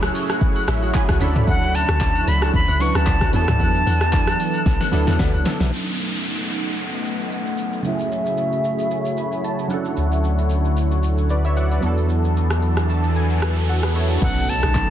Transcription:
Already playing: C#2 C#3 F#3 A3 C#4 E4 F#4 G#4 C#5
0.03 cross-stick, high agogo, shaker
0.15 open hi-hat, shaker
0.29 cross-stick, high agogo, shaker
0.41 kick, shaker
0.56 high agogo, shaker
0.68 A1 E5, cross-stick, open hi-hat, shaker
0.82 F#4, high agogo, shaker
0.95 E4 G#4 G#5, kick, clap, low woodblock, shaker
1.09 C#2 F#4 A4, kick, cross-stick, high agogo, shaker
1.20 D2 D3 F#3 A3 C#4 D4 E4 F#4 A4 B5, open hi-hat, shaker
1.36 mid tom, shaker
1.47 D2 F#5, kick, high agogo, shaker
1.63 shaker
1.74 A5, open hi-hat, high agogo, shaker
1.89 D2, cross-stick, shaker
2.00 kick, clap, shaker
2.15 high agogo, shaker
2.27 C#2 B5, open hi-hat, shaker
2.41 A5, cross-stick, high agogo, shaker
2.54 D2 B5, kick, shaker
2.68 C#2, high agogo, shaker
2.79 F#3 C#4 D4 E4 B4 C#6, open hi-hat, shaker
2.95 D2 A5, cross-stick, high agogo, shaker
3.07 C#2, kick, clap, low woodblock, shaker
3.21 kick, cross-stick, high agogo, shaker
3.32 E2 E3 F#3 B3 D4 E4 G#4 A4 A5, open hi-hat, shaker
3.42 A4
3.48 D2, cross-stick, mid tom, shaker
3.60 E2, kick, high agogo, shaker
3.75 shaker
3.86 E2, open hi-hat, high agogo, shaker
4.01 cross-stick, shaker
4.13 kick, clap, shaker
4.27 cross-stick, high agogo, shaker
4.40 open hi-hat, shaker
4.54 high agogo, shaker
4.66 B1, kick, snare, shaker
4.81 snare, high agogo, shaker
4.92 D2 F#3 B3 D4 E4 A4, open hi-hat, shaker
5.07 E2, snare, high agogo, shaker
5.19 D2, kick, snare, low woodblock, shaker
5.34 C#2, high agogo, shaker
5.45 F#3 B3 D4 E4 A4, snare, open hi-hat, shaker
5.60 B1, snare, shaker
5.70 F#3 A3 B3 C#4 D#4 A5, downlifter, shaker
5.74 D4 A4
5.81 D#4
5.87 shaker
6.00 shaker
6.14 shaker
6.25 F#5, shaker
6.40 shaker
6.52 shaker
6.67 shaker
6.79 shaker
6.93 shaker
7.05 shaker
7.20 shaker
7.32 F#5, shaker
7.47 shaker
7.58 shaker
7.73 shaker
7.82 C#3 F#3 A3 C#4 E4 F#4 G#4 C#5 E5, shaker
7.87 E4 G4
7.94 G#4
8.00 shaker
8.12 shaker
8.26 shaker
8.37 shaker
8.53 shaker
8.65 shaker
8.79 shaker
8.91 shaker
9.05 shaker
9.17 B5, shaker
9.32 shaker
9.44 A5, shaker
9.59 shaker
9.68 D3 F#3 A3 C#4 D4 E4 F#5, shaker
9.72 E4 A4
9.85 shaker
9.97 D2, shaker
10.12 shaker
10.24 shaker
10.39 shaker
10.50 shaker
10.65 shaker
10.77 shaker
10.91 shaker
11.03 shaker
11.18 shaker
11.30 B4 D5, shaker
11.45 C#5 E5, shaker
11.57 D5 F#5, shaker
11.71 B4 D5, shaker
11.80 E2 E3 F#3 B3 D4 A4, shaker
11.85 E4 A4
11.98 shaker
12.09 riser, shaker
12.24 shaker
12.37 shaker
12.50 cross-stick, shaker
12.62 shaker
12.77 cross-stick, shaker
12.89 A5, shaker
13.04 shaker
13.16 G#5, shaker
13.30 shaker
13.42 cross-stick, shaker
13.57 shaker
13.69 F#4 A4 F#5, shaker
13.83 G#4 B4, cross-stick, shaker
13.95 A4 C#5 E5, shaker
14.10 F#4 A4, shaker
14.21 B1 F#3 A3 B3 C#4 D#4 A4 F#5, kick, crash, impact, shaker
14.37 shaker
14.49 A5, open hi-hat, shaker
14.63 B1, cross-stick, shaker
14.75 kick, clap, shaker

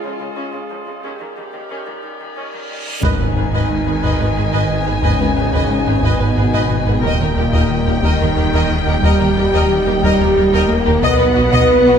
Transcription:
Already playing: G#3 C#4 F4 G#4
0.03 C#2 C#3 F3
0.19 C#3 G#3
0.36 C#2 C#3 C#4
0.53 C#2 C#3 G#3
0.70 C#2 C#3 F3
0.87 C#2 C#3 G#3
1.02 D#2 D#3 G3 C#4 D#4 G4 A#4, reverse cymbal
1.19 D#2 D#3 A#3
1.36 D#2 D#3 G3
1.53 D#3 A#3
1.70 D#2 D#3 C#4
1.86 D#3 A#3
2.03 D#2 D#3 G3
2.19 D#3 A#3
2.36 D#2 D#3 C#4
2.53 D#2 D#3 A#3
2.70 D#2 D#3 G3
2.86 D#2 D#3 A#3
3.01 G#1 G#2 D#3 B3 D#4 B4 D#5 G#5, taiko, impact
3.20 G#1 G#3 B4
3.36 G#1 G#2 G#4 B4
3.53 G#1 G#2 B4 D#5, taiko
3.71 G#3
3.87 G#1 G#2 G#4 B4
4.02 G#1 G#2 B4 D#5, taiko
4.20 G#1 G#2 B4
4.36 G#1 G#2 G#4 B4
4.53 G#1 G#2 B4 D#5
4.70 G#2
4.86 G#1 G#2 G#4 B4
5.02 G#1 G#2 C#3 C#4 B4 D#5, taiko
5.20 G#1 G#3 B4
5.36 G#1 G#2 G#4 B4
5.52 G#1 G#2 B4 D#5, taiko
5.71 G#3
5.86 G#1 G#2 G#4 B4
6.02 G#1 G#2 B2 B3 B4 D#5, taiko
6.20 G#1 G#2 B4
6.37 G#1 G#2 G#4 B4
6.53 G#1 G#2 B4 D#5
6.71 G#2
6.87 G#1 G#2 G#4 B4
7.02 D#1 D#2 A#2 D#3 G3 A#3 D#4 A#4 D#5 G5, taiko
7.20 D#2 D#3 A#4
7.37 D#2 G4 A#4
7.53 D#2 A#4 D#5, taiko
7.70 D#3
7.86 D#2 G4 A#4
8.03 D#2 D#3 D#4 A#4 D#5, taiko
8.20 D#2 A#4
8.37 D#2 G4 A#4
8.53 D#2 A#4 D#5
8.70 D#2
8.87 D#2 G4 A#4
9.03 D#2 G3 G4 A#4 D#5, taiko
9.19 D#2 D#3 A#4
9.36 D#2 G4 A#4
9.53 D#2 A#4 D#5, taiko
9.70 D#3
9.86 D#2 G4 A#4
10.02 D#2 G3 G4 A#4 D#5, taiko
10.19 D#2 A#4
10.36 D#2 G4 A#4
10.53 D#2 A#4 D#5
10.70 D#2 A#3 A#4
10.86 D#2 G4 A#4
11.02 B1 B2 D#3 F#3 B3 D#4 B4 D#5 F#5, taiko
11.19 B1 B3 B4 D#5
11.36 B1 B2 F#4 D#5
11.52 B1 B2 D#5, taiko
11.70 B3
11.86 B1 B2 F#4 D#5

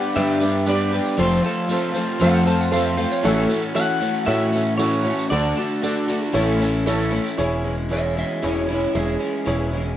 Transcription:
Already playing: G3 B3 D4 G4 B4 D5 F#5 B5
0.03 tambourine
0.15 G2 D3 G3 B3 D4 G4 B4 D5 E5, tambourine
0.40 G3 B3 D4 G4 B4, tambourine
0.54 tambourine
0.65 G3 B3 D4 G4 B4 D5, tambourine
0.69 B4 D5
0.80 tambourine
0.91 G3 B3 D4 G4 B4
1.05 tambourine
1.17 F1 F2 C3 F3 A3 C4 F4 A4 C5 A5, tambourine
1.21 A4
1.32 tambourine
1.42 F3 A3 C4 F4 A4, tambourine
1.48 C4
1.67 F3 A3 C4 F4, tambourine
1.71 A4 C5
1.92 F3 A3 C4 F4 A4, tambourine
1.97 F3 A3 C4 F4
2.07 tambourine
2.19 F2 C3 F3 A3 C4 F4 A4 C5 F#5, tambourine
2.25 A4
2.44 F3 A3 C4 F4 A4 A5, tambourine
2.49 C4 F4
2.60 F#5, tambourine
2.71 F3 A3 C4 F4 A4 C5 F5, tambourine
2.76 A4
2.86 E5
2.96 F3 A3 C4 F4 A4 F5, tambourine
3.02 C4
3.12 C#5, tambourine
3.23 A1 A2 E3 A3 C#4 E4 F#4 A4 C#5, tambourine
3.27 A4
3.38 tambourine
3.48 A3 C#4 E4 F#4 A4, tambourine
3.73 E3 A3 C#4 E4 F#4 A4 C#5 F#5, tambourine
3.78 A4
3.90 tambourine
4.00 A3 C#4 E4 F#4 A4, tambourine
4.05 A2
4.15 tambourine
4.25 A2 E3 A3 C#4 E4 F#4 A4 C#5 E5, tambourine
4.29 A4
4.52 C#4 E4 F#4 A4, tambourine
4.56 A3
4.67 tambourine
4.77 A2 E3 A3 C#4 E4 F#4 A4 C#5, tambourine
4.82 A4
4.92 tambourine
5.03 A3 C#4 E4 F#4 A4, tambourine
5.19 tambourine
5.29 D2 D3 A3 D4 F#4 A4 D5, tambourine
5.34 A4
5.44 tambourine
5.56 A3 D4 F#4 A4
5.71 tambourine
5.82 D3 A3 D4 F#4 A4 D5, tambourine
5.97 tambourine
6.08 D3 A3 D4 F#4 A4, tambourine
6.22 tambourine
6.32 A1 A2 E3 A3 C#4 E4 A4 C#5, tambourine
6.38 A4
6.49 tambourine
6.59 A3 C#4 E4 A4, tambourine
6.75 tambourine
6.85 A2 E3 A3 C#4 E4 A4 C#5, tambourine
6.89 A4
7.01 tambourine
7.11 A3 C#4 E4 A4, tambourine
7.27 tambourine
7.38 E1 E2 B2 E3 G#3 C#4 E4 G#4 C#5
7.64 E3 G#3 C#4 E4
7.89 E3 G#3 C#4 E4 G#4 C#5 E5
8.15 E3 G#3 C#4 E4 C#5 E5
8.42 E1 E2 B2 E3 G#3 C#4 E4 G#4 C#5
8.67 E3 G#3 C#4 E4
8.72 C#5
8.93 E1 E3 G#3 C#4 E4 G#4 C#5
9.19 E3 G#3 C#4 E4
9.45 E1 E2 B2 E3 G#3 C#4 E4 G#4 C#5
9.72 E3 G#3 C#4 E4

